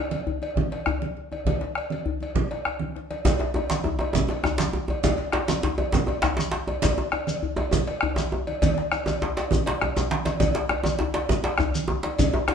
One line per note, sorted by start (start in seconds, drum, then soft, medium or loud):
0.11 bombo rim soft
0.11 cowbell soft
0.11 high conga medium
0.27 high conga soft
0.27 djembe bass medium
0.42 cowbell soft
0.42 high conga soft
0.42 djembe tone medium
0.56 bombo rim soft
0.56 bombo low medium
0.56 high conga medium
0.56 low conga medium
0.72 cowbell soft
0.72 djembe slap soft
0.86 bombo rim medium
0.86 cowbell soft
0.86 djembe slap soft
0.86 djembe tone medium
0.86 high conga soft
0.86 djembe bass medium
1.01 djembe slap soft
1.01 high conga soft
1.17 high conga soft
1.32 cowbell soft
1.32 djembe tone medium
1.32 high conga soft
1.45 bombo low medium
1.45 cowbell soft
1.45 djembe slap soft
1.45 high conga medium
1.45 low conga medium
1.45 djembe bass medium
1.61 bombo rim soft
1.61 djembe slap medium
1.61 high conga soft
1.75 bombo rim medium
1.75 cowbell soft
1.90 cowbell soft
1.90 djembe slap soft
1.90 high conga soft
2.06 djembe bass medium
2.20 cowbell soft
2.20 high conga soft
2.20 djembe tone medium
2.35 bombo rim soft
2.35 bombo low medium
2.35 high conga medium
2.35 low conga medium
2.51 cowbell soft
2.51 djembe slap soft
2.65 bombo rim medium
2.65 cowbell soft
2.65 djembe bass soft
2.80 high conga soft
2.80 djembe bass soft
2.96 bombo rim soft
2.96 djembe slap soft
3.10 cowbell soft
3.10 djembe slap medium
3.10 high conga soft
3.25 bombo low medium
3.25 cowbell medium
3.25 djembe tone loud
3.25 high conga medium
3.25 djembe bass medium
3.25 low conga medium
3.25 shekere medium
3.39 bombo rim soft
3.39 djembe slap medium
3.39 djembe tone medium
3.54 djembe slap soft
3.54 djembe tone medium
3.56 cowbell soft
3.56 djembe tone medium
3.70 bombo rim soft
3.70 cowbell soft
3.70 djembe slap medium
3.70 high conga medium
3.70 shekere soft
3.84 djembe tone medium
3.84 high conga soft
3.84 djembe bass medium
3.99 djembe tone medium
4.00 cowbell soft
4.00 djembe tone medium
4.00 high conga soft
4.13 bombo rim soft
4.13 bombo low medium
4.13 djembe tone medium
4.13 high conga medium
4.13 low conga medium
4.13 shekere medium
4.28 cowbell soft
4.28 djembe slap medium
4.28 djembe tone medium
4.44 bombo rim medium
4.44 cowbell soft
4.44 djembe slap soft
4.44 djembe tone medium
4.44 high conga soft
4.44 djembe bass medium
4.44 shekere soft
4.58 djembe slap medium
4.58 djembe slap soft
4.58 high conga medium
4.58 shekere soft
4.73 djembe tone medium
4.73 high conga soft
4.88 cowbell soft
4.88 djembe tone medium
4.88 high conga soft
5.04 bombo low medium
5.04 cowbell medium
5.04 high conga medium
5.04 djembe bass medium
5.04 low conga medium
5.04 shekere medium
5.18 bombo rim soft
5.18 djembe slap medium
5.32 bombo rim medium
5.32 cowbell soft
5.32 djembe slap loud
5.32 djembe tone medium
5.47 bombo rim soft
5.47 cowbell soft
5.47 djembe slap medium
5.47 high conga medium
5.47 shekere soft
5.63 djembe slap medium
5.63 high conga soft
5.63 djembe bass medium
5.78 cowbell medium
5.78 djembe tone medium
5.78 high conga soft
5.92 bombo rim soft
5.92 bombo low medium
5.92 djembe slap medium
5.92 high conga medium
5.92 low conga medium
5.92 shekere medium
6.07 cowbell soft
6.07 djembe slap medium
6.07 djembe tone medium
6.22 bombo rim medium
6.22 cowbell soft
6.22 djembe slap loud
6.24 djembe slap soft
6.24 djembe tone medium
6.24 high conga soft
6.24 djembe bass medium
6.24 shekere soft
6.37 djembe slap medium
6.37 high conga medium
6.38 djembe slap soft
6.38 shekere soft
6.51 djembe slap medium
6.51 high conga soft
6.67 cowbell soft
6.67 djembe tone medium
6.67 high conga soft
6.67 djembe tone soft
6.82 bombo low medium
6.82 cowbell medium
6.82 djembe slap medium
6.82 high conga medium
6.82 low conga medium
6.82 djembe bass medium
6.82 shekere medium
6.98 bombo rim soft
6.98 djembe slap medium
6.98 djembe tone medium
7.12 bombo rim medium
7.12 cowbell soft
7.12 djembe slap soft
7.12 djembe tone medium
7.27 bombo rim soft
7.27 cowbell soft
7.27 high conga medium
7.27 shekere soft
7.43 high conga soft
7.43 djembe bass medium
7.56 cowbell medium
7.56 djembe tone loud
7.56 djembe tone medium
7.56 high conga soft
7.71 bombo rim soft
7.71 bombo low medium
7.71 djembe tone medium
7.71 high conga medium
7.71 low conga medium
7.71 shekere medium
7.87 cowbell medium
7.87 djembe slap medium
8.01 bombo rim loud
8.01 cowbell medium
8.01 djembe slap soft
8.01 high conga soft
8.01 djembe tone medium
8.01 djembe bass medium
8.16 djembe tone loud
8.16 high conga medium
8.16 shekere soft
8.32 djembe tone medium
8.32 high conga soft
8.47 cowbell medium
8.47 djembe tone medium
8.47 high conga soft
8.62 bombo rim soft
8.62 bombo low loud
8.62 cowbell medium
8.62 high conga medium
8.62 djembe bass medium
8.62 low conga medium
8.62 shekere medium
8.77 bombo rim soft
8.77 djembe slap medium
8.92 bombo rim loud
8.92 cowbell medium
8.92 djembe slap soft
8.92 djembe tone medium
8.92 high conga soft
8.92 shekere soft
9.06 cowbell medium
9.06 djembe tone loud
9.06 high conga medium
9.06 shekere soft
9.22 djembe slap soft
9.22 djembe slap medium
9.22 high conga soft
9.22 djembe bass medium
9.37 cowbell medium
9.37 djembe slap medium
9.37 djembe tone medium
9.37 shekere soft
9.51 bombo low loud
9.51 high conga medium
9.51 djembe tone medium
9.51 low conga medium
9.51 shekere medium
9.66 cowbell medium
9.66 djembe slap medium
9.66 low conga soft
9.81 bombo rim loud
9.81 cowbell medium
9.81 djembe tone medium
9.81 djembe bass soft
9.81 low conga soft
9.96 bombo rim soft
9.96 djembe tone loud
9.96 low conga medium
9.96 djembe bass soft
9.96 shekere soft
10.11 djembe slap medium
10.11 high conga medium
10.25 cowbell medium
10.25 djembe slap medium
10.25 high conga medium
10.25 shekere soft
10.40 bombo low medium
10.40 cowbell medium
10.40 high conga medium
10.40 djembe tone medium
10.40 low conga medium
10.40 djembe bass medium
10.40 shekere medium
10.54 bombo rim soft
10.54 djembe slap medium
10.69 bombo rim loud
10.69 cowbell soft
10.69 djembe slap soft
10.69 djembe tone medium
10.84 bombo rim soft
10.84 cowbell medium
10.84 djembe tone loud
10.84 high conga medium
10.84 shekere soft
10.99 djembe slap medium
10.99 high conga soft
10.99 djembe bass medium
11.14 cowbell medium
11.14 djembe slap medium
11.14 high conga soft
11.14 djembe tone medium
11.29 bombo rim soft
11.29 bombo low medium
11.29 djembe tone medium
11.29 high conga medium
11.29 low conga medium
11.29 shekere soft
11.44 cowbell soft
11.44 djembe slap medium
11.58 bombo rim loud
11.58 cowbell soft
11.58 djembe slap soft
11.58 djembe tone medium
11.58 high conga soft
11.58 djembe bass medium
11.58 shekere soft
11.75 djembe slap soft
11.75 high conga medium
11.75 shekere soft
11.88 djembe tone loud
11.88 high conga soft
12.03 cowbell soft
12.03 djembe slap medium
12.03 djembe tone medium
12.03 high conga soft
12.19 bombo low medium
12.19 cowbell medium
12.19 high conga medium
12.19 djembe bass medium
12.19 low conga medium
12.19 shekere medium
12.33 bombo rim soft
12.33 djembe slap medium
12.33 djembe tone loud
12.48 bombo rim medium
12.48 cowbell soft
12.48 djembe slap soft
12.48 djembe slap medium
12.48 djembe tone medium